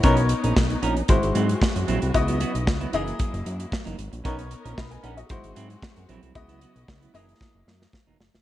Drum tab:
HH |xxxx-xxxxxxx-xxx|xxxx-xxxxxxx-xxx|xxxx-xxxxxxx-xxx|xxxx-xxx--------|
SD |----o-------o---|----o-------o---|----o-------o---|----o---o-ooo-oo|
BD |o---o---o---o---|o---o---o---o---|o---o---o---o---|o---o---o---o---|